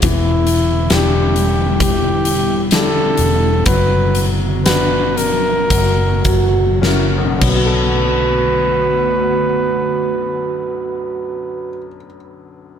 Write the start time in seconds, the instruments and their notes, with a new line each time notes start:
0.02 fingered electric bass E1, ambient pad D3 G3 B3 E4, grand piano E3, kick, closed hi-hat
0.07 flugelhorn E4
0.47 closed hi-hat
0.90 fingered electric bass E1, grand piano D4 E4 G4, flugelhorn G4, snare, closed hi-hat
1.36 closed hi-hat
1.80 flugelhorn G4, kick, closed hi-hat
2.25 closed hi-hat
2.71 grand piano D4 E4 G4, flugelhorn A4, snare, closed hi-hat
3.17 fingered electric bass E1, closed hi-hat
3.66 fingered electric bass F#1, ambient pad D3 F#3 F#4, grand piano F#3, flugelhorn B4, kick, closed hi-hat
4.15 closed hi-hat
4.66 grand piano B3 D4 F#4, flugelhorn B4, snare, closed hi-hat
5.17 flugelhorn A#4, closed hi-hat
5.70 fingered electric bass F#1, ambient pad C#3 A#3 F#4, grand piano F#3, kick, closed hi-hat
6.25 fingered electric bass F#1, french horn section F#4, kick, closed hi-hat
6.81 grand piano C#4 F#4 A#4, french horn section E4, snare
7.11 french horn section F#4
7.18 grand piano B1
7.27 grand piano F#2
7.37 grand piano D3, flugelhorn B4
7.41 fingered electric bass B1, ambient pad D3 A3 B3 F#4, french horn section F#4, kick, crash
7.46 grand piano B3
7.55 grand piano F#4
7.65 grand piano A4